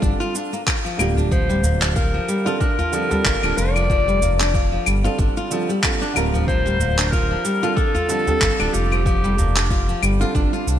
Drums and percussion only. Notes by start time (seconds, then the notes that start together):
0.03 kick, shaker
0.21 shaker
0.35 shaker
0.53 shaker
0.67 kick, clap, claves, shaker
0.86 shaker
0.99 claves, shaker
1.16 udu, shaker
1.32 kick, shaker
1.50 shaker
1.63 udu, shaker
1.82 clap, shaker
1.96 kick, shaker
2.29 shaker
2.47 shaker
2.61 kick, shaker
2.78 udu, shaker
2.93 shaker
3.11 udu, shaker
3.25 kick, clap, shaker
3.43 claves, shaker
3.58 shaker
3.76 claves, shaker
3.90 kick, shaker
4.09 shaker
4.22 udu, shaker
4.40 clap, shaker
4.54 kick, shaker
4.86 claves, shaker
5.05 shaker
5.19 kick, shaker
5.37 shaker
5.51 shaker
5.70 shaker
5.83 kick, clap, claves, shaker
6.02 shaker
6.16 claves, shaker
6.34 udu, shaker
6.48 kick, shaker
6.67 shaker
6.79 udu, shaker
6.98 clap, shaker
7.13 kick, shaker
7.45 shaker
7.63 shaker
7.77 kick, shaker
7.94 udu, shaker
8.09 shaker
8.27 udu, shaker
8.41 kick, clap, shaker
8.60 claves, shaker
8.74 shaker
8.92 claves, shaker
9.06 kick, shaker
9.24 shaker
9.39 udu, shaker
9.56 clap, shaker
9.71 kick, shaker
9.89 shaker
10.03 claves, shaker
10.21 shaker
10.35 kick, shaker
10.54 shaker
10.68 shaker